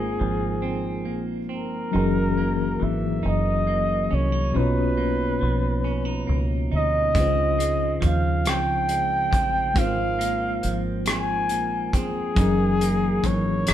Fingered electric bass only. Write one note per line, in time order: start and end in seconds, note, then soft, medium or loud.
0.00 0.16 G#1 loud
0.21 1.08 G#1 medium
1.08 1.52 A#1 medium
1.52 1.90 G1 medium
1.95 2.77 F#1 loud
2.82 3.21 G#1 medium
3.25 4.07 F#1 medium
4.13 4.51 C2 medium
4.56 5.38 B1 medium
5.42 6.25 B1 medium
6.29 6.68 C#2 medium
6.73 7.12 D2 medium
7.16 7.98 C#2 medium
8.03 8.47 D#2 medium
8.47 9.29 C#2 medium
9.34 9.72 A1 medium
9.76 10.59 G#1 loud
10.64 11.52 G#1 medium
11.52 11.94 A#1 medium
11.94 12.33 G1 medium
12.37 13.20 F#1 loud
13.24 13.63 G#1 medium
13.69 13.74 F#1 medium